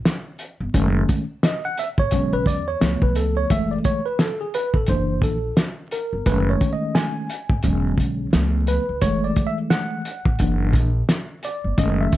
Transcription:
0.05 snare, closed hi-hat
0.39 closed hi-hat
0.60 G1
0.74 F#1 D#3 G#3 A3 C#4, kick, closed hi-hat
1.09 kick, closed hi-hat
1.43 D#5, snare, closed hi-hat
1.65 F#5
1.78 E5, closed hi-hat
1.98 G#1 C#5, kick
2.11 E1 D3 F#3 G#3 C#4, kick, closed hi-hat
2.33 B1 B4
2.46 E2 D5, kick, closed hi-hat
2.68 C#5
2.80 C#2 F3 A3 B3, snare, closed hi-hat
3.02 B1 B4, kick
3.15 C#2 A4, closed hi-hat
3.37 C#5
3.50 F#1 E3 G#3 A3 E5, kick, closed hi-hat
3.71 D5
3.84 C#5, kick, closed hi-hat
4.06 B4
4.19 A4, snare, closed hi-hat
4.41 G#4
4.54 B4, closed hi-hat
4.74 A1 A4, kick
4.86 F#1 E3 A#3 D4 C5, kick, closed hi-hat
5.22 A#1 A4, kick, closed hi-hat
5.57 snare, closed hi-hat
5.91 A#4, closed hi-hat
6.13 G1
6.26 F#1 D#3 G#3 A3 C#4 B4, kick, closed hi-hat
6.50 C#5
6.61 kick, closed hi-hat
6.73 D#5
6.95 G#5, snare, closed hi-hat
7.29 closed hi-hat
7.50 G#1, kick
7.63 E1 D3 F#3 G#3 C#4, kick, closed hi-hat
7.98 B1, kick, closed hi-hat
8.32 C#2 F3 A3 B3, snare, closed hi-hat
8.67 B4, closed hi-hat
8.89 C#2
9.02 F#1 E3 G#3 A3 C#5, kick, closed hi-hat
9.24 D5
9.36 kick, closed hi-hat
9.47 E5
9.70 F#5, snare, closed hi-hat
10.05 closed hi-hat
10.25 A1, kick
10.39 F#1 E3 A#3 D4, kick, closed hi-hat
10.73 A#1, kick, closed hi-hat
11.09 snare, closed hi-hat
11.43 D5, closed hi-hat
11.64 G1
11.77 F#1 D#3 G#3 A3 C#4 D#5, kick, closed hi-hat
12.01 E5
12.12 kick, closed hi-hat

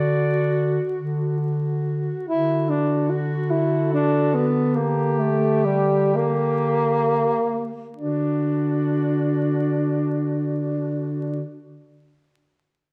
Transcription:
Already playing: D3 F#4 D5
0.09 F#4
0.96 D3
1.39 F#4
2.28 D3 E4 F#4
2.69 D4
3.10 F#4
3.50 E4 A4
3.93 D4
4.34 B3
4.75 A#3 G4
5.19 A3
5.65 G3
6.14 A#3 G4 A#4
7.95 D3 D4 F#4 D5

